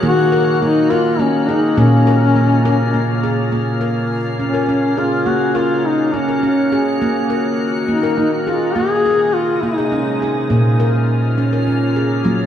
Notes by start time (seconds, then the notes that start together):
Already playing: A#3 F#4
0.03 D#3 A#3 F#4
0.32 A#4
0.62 A#3 D#4
0.90 F4 A#4
1.19 A#3 C#4
1.48 D#4 G#4
1.77 A#2 C#3 A#3 C#4 F4
2.07 A#4
2.36 A#3
2.65 A#4
2.94 A#3
3.23 G#4
3.51 C#3 A#3 F4
3.81 A#4
4.39 C#4
4.54 A#4
4.69 C#4
4.97 F4 G#4
5.26 A#3 F#4
5.55 F4 A#4
5.86 D#4
6.14 C#4
6.28 A#4
6.43 C#4
6.72 G#4
7.02 D#3 A#3
7.30 A#4
7.88 A#3 D#4
8.03 A#4
8.18 A#3 D#4
8.47 F4 G#4
8.75 C3 G#3 A#3 D#4 G#4
9.06 G#4
9.34 F4
9.62 A#3 D#4
9.78 G#4
9.92 C#4
10.22 G#4
10.50 A#2 C#3 A#3 F4
10.80 A#4
11.38 C#4
11.53 A#4
11.67 C#4
11.96 G#4
12.25 F#3 A#3